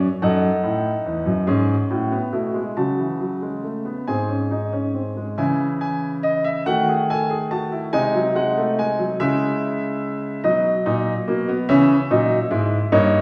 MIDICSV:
0, 0, Header, 1, 2, 480
1, 0, Start_track
1, 0, Key_signature, 4, "minor"
1, 0, Tempo, 843882
1, 119, Time_signature, 6, 3, 24, 8
1, 1080, Tempo, 870827
1, 3480, Tempo, 834492
1, 7484, End_track
2, 0, Start_track
2, 0, Title_t, "Grand piano"
2, 0, Program_c, 0, 0
2, 0, Note_on_c, 0, 66, 83
2, 100, Note_off_c, 0, 66, 0
2, 126, Note_on_c, 0, 69, 76
2, 126, Note_on_c, 0, 78, 74
2, 127, Note_on_c, 0, 42, 83
2, 129, Note_on_c, 0, 63, 70
2, 272, Note_off_c, 0, 42, 0
2, 360, Note_on_c, 0, 45, 71
2, 508, Note_off_c, 0, 45, 0
2, 603, Note_on_c, 0, 40, 70
2, 716, Note_off_c, 0, 40, 0
2, 716, Note_on_c, 0, 42, 70
2, 820, Note_off_c, 0, 69, 0
2, 821, Note_off_c, 0, 63, 0
2, 833, Note_off_c, 0, 42, 0
2, 837, Note_on_c, 0, 68, 80
2, 838, Note_on_c, 0, 61, 75
2, 839, Note_on_c, 0, 44, 80
2, 987, Note_off_c, 0, 68, 0
2, 989, Note_off_c, 0, 44, 0
2, 1082, Note_on_c, 0, 66, 60
2, 1083, Note_on_c, 0, 45, 73
2, 1188, Note_off_c, 0, 61, 0
2, 1202, Note_on_c, 0, 59, 66
2, 1229, Note_off_c, 0, 45, 0
2, 1229, Note_off_c, 0, 66, 0
2, 1315, Note_off_c, 0, 59, 0
2, 1315, Note_on_c, 0, 47, 69
2, 1315, Note_on_c, 0, 64, 53
2, 1316, Note_on_c, 0, 57, 51
2, 1433, Note_off_c, 0, 57, 0
2, 1434, Note_on_c, 0, 56, 58
2, 1465, Note_off_c, 0, 47, 0
2, 1465, Note_off_c, 0, 64, 0
2, 1539, Note_off_c, 0, 78, 0
2, 1553, Note_off_c, 0, 56, 0
2, 1558, Note_on_c, 0, 54, 52
2, 1559, Note_on_c, 0, 49, 61
2, 1559, Note_on_c, 0, 66, 62
2, 1559, Note_on_c, 0, 81, 60
2, 1676, Note_off_c, 0, 54, 0
2, 1678, Note_on_c, 0, 52, 49
2, 1797, Note_off_c, 0, 52, 0
2, 1798, Note_on_c, 0, 54, 54
2, 1917, Note_off_c, 0, 54, 0
2, 1921, Note_on_c, 0, 56, 50
2, 2037, Note_on_c, 0, 57, 49
2, 2038, Note_off_c, 0, 56, 0
2, 2156, Note_off_c, 0, 57, 0
2, 2156, Note_on_c, 0, 59, 53
2, 2262, Note_off_c, 0, 49, 0
2, 2262, Note_off_c, 0, 66, 0
2, 2262, Note_off_c, 0, 81, 0
2, 2276, Note_off_c, 0, 59, 0
2, 2280, Note_on_c, 0, 44, 60
2, 2280, Note_on_c, 0, 80, 66
2, 2281, Note_on_c, 0, 60, 58
2, 2283, Note_on_c, 0, 68, 61
2, 2398, Note_off_c, 0, 60, 0
2, 2398, Note_on_c, 0, 61, 49
2, 2517, Note_off_c, 0, 61, 0
2, 2520, Note_on_c, 0, 63, 53
2, 2638, Note_off_c, 0, 63, 0
2, 2638, Note_on_c, 0, 61, 57
2, 2757, Note_on_c, 0, 60, 46
2, 2758, Note_off_c, 0, 61, 0
2, 2878, Note_off_c, 0, 60, 0
2, 2882, Note_on_c, 0, 56, 53
2, 2982, Note_off_c, 0, 44, 0
2, 2982, Note_off_c, 0, 80, 0
2, 2984, Note_off_c, 0, 68, 0
2, 2997, Note_on_c, 0, 49, 73
2, 2997, Note_on_c, 0, 64, 73
2, 2998, Note_on_c, 0, 52, 65
2, 2999, Note_on_c, 0, 80, 66
2, 3000, Note_off_c, 0, 56, 0
2, 3148, Note_off_c, 0, 80, 0
2, 3236, Note_on_c, 0, 80, 77
2, 3384, Note_off_c, 0, 80, 0
2, 3469, Note_on_c, 0, 75, 84
2, 3590, Note_on_c, 0, 76, 84
2, 3593, Note_off_c, 0, 75, 0
2, 3698, Note_off_c, 0, 49, 0
2, 3698, Note_off_c, 0, 52, 0
2, 3698, Note_off_c, 0, 64, 0
2, 3713, Note_on_c, 0, 66, 78
2, 3714, Note_off_c, 0, 76, 0
2, 3714, Note_on_c, 0, 57, 70
2, 3715, Note_on_c, 0, 51, 77
2, 3716, Note_on_c, 0, 78, 94
2, 3836, Note_off_c, 0, 66, 0
2, 3841, Note_on_c, 0, 68, 64
2, 3868, Note_off_c, 0, 78, 0
2, 3960, Note_off_c, 0, 68, 0
2, 3967, Note_on_c, 0, 69, 76
2, 3968, Note_on_c, 0, 80, 85
2, 4083, Note_on_c, 0, 68, 69
2, 4084, Note_off_c, 0, 69, 0
2, 4117, Note_off_c, 0, 80, 0
2, 4201, Note_off_c, 0, 68, 0
2, 4203, Note_on_c, 0, 66, 67
2, 4203, Note_on_c, 0, 81, 72
2, 4322, Note_off_c, 0, 66, 0
2, 4324, Note_on_c, 0, 64, 67
2, 4354, Note_off_c, 0, 81, 0
2, 4422, Note_off_c, 0, 57, 0
2, 4423, Note_off_c, 0, 51, 0
2, 4444, Note_off_c, 0, 64, 0
2, 4444, Note_on_c, 0, 63, 78
2, 4444, Note_on_c, 0, 80, 90
2, 4445, Note_on_c, 0, 56, 71
2, 4446, Note_on_c, 0, 48, 70
2, 4565, Note_off_c, 0, 56, 0
2, 4569, Note_on_c, 0, 54, 68
2, 4595, Note_off_c, 0, 80, 0
2, 4687, Note_off_c, 0, 54, 0
2, 4689, Note_on_c, 0, 78, 75
2, 4690, Note_on_c, 0, 56, 62
2, 4808, Note_off_c, 0, 56, 0
2, 4815, Note_on_c, 0, 57, 71
2, 4839, Note_off_c, 0, 78, 0
2, 4930, Note_off_c, 0, 57, 0
2, 4938, Note_on_c, 0, 80, 76
2, 4939, Note_on_c, 0, 56, 58
2, 5052, Note_off_c, 0, 56, 0
2, 5052, Note_on_c, 0, 54, 62
2, 5085, Note_off_c, 0, 80, 0
2, 5147, Note_off_c, 0, 63, 0
2, 5148, Note_off_c, 0, 48, 0
2, 5168, Note_off_c, 0, 54, 0
2, 5174, Note_on_c, 0, 49, 75
2, 5174, Note_on_c, 0, 76, 94
2, 5175, Note_on_c, 0, 56, 76
2, 5175, Note_on_c, 0, 64, 73
2, 5867, Note_off_c, 0, 49, 0
2, 5867, Note_off_c, 0, 64, 0
2, 5867, Note_off_c, 0, 76, 0
2, 5868, Note_off_c, 0, 56, 0
2, 5887, Note_on_c, 0, 63, 63
2, 5887, Note_on_c, 0, 75, 73
2, 5888, Note_on_c, 0, 47, 76
2, 5888, Note_on_c, 0, 54, 77
2, 6035, Note_off_c, 0, 47, 0
2, 6035, Note_off_c, 0, 63, 0
2, 6130, Note_on_c, 0, 63, 84
2, 6131, Note_on_c, 0, 46, 69
2, 6277, Note_off_c, 0, 63, 0
2, 6278, Note_off_c, 0, 46, 0
2, 6370, Note_on_c, 0, 58, 79
2, 6373, Note_on_c, 0, 47, 71
2, 6485, Note_off_c, 0, 58, 0
2, 6489, Note_on_c, 0, 59, 82
2, 6520, Note_off_c, 0, 47, 0
2, 6584, Note_off_c, 0, 75, 0
2, 6585, Note_off_c, 0, 54, 0
2, 6604, Note_off_c, 0, 59, 0
2, 6606, Note_on_c, 0, 61, 100
2, 6606, Note_on_c, 0, 76, 89
2, 6607, Note_on_c, 0, 52, 81
2, 6608, Note_on_c, 0, 49, 87
2, 6754, Note_off_c, 0, 61, 0
2, 6755, Note_off_c, 0, 49, 0
2, 6755, Note_off_c, 0, 52, 0
2, 6845, Note_on_c, 0, 46, 75
2, 6849, Note_on_c, 0, 54, 74
2, 6849, Note_on_c, 0, 63, 84
2, 6991, Note_off_c, 0, 46, 0
2, 6994, Note_off_c, 0, 63, 0
2, 6995, Note_off_c, 0, 54, 0
2, 7077, Note_on_c, 0, 64, 84
2, 7078, Note_on_c, 0, 44, 79
2, 7079, Note_on_c, 0, 56, 70
2, 7225, Note_off_c, 0, 64, 0
2, 7226, Note_off_c, 0, 44, 0
2, 7227, Note_off_c, 0, 56, 0
2, 7297, Note_off_c, 0, 76, 0
2, 7315, Note_on_c, 0, 43, 82
2, 7315, Note_on_c, 0, 58, 88
2, 7316, Note_on_c, 0, 63, 93
2, 7317, Note_on_c, 0, 73, 84
2, 7465, Note_off_c, 0, 43, 0
2, 7465, Note_off_c, 0, 63, 0
2, 7484, Note_off_c, 0, 58, 0
2, 7484, Note_off_c, 0, 73, 0
2, 7484, End_track
0, 0, End_of_file